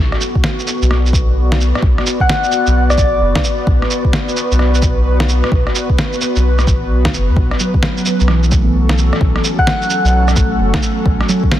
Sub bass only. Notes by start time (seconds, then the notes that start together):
Already playing: B1
0.82 B1
1.83 B1
2.67 B1
2.98 A1
3.21 F#1
3.67 B1
4.51 B1
5.52 B1
6.36 B1
6.67 A1
6.91 B1
7.14 F#1
7.29 E2
7.36 B1
8.21 B1
9.21 B1
10.04 B1
10.36 A1
10.60 F#1
11.05 B1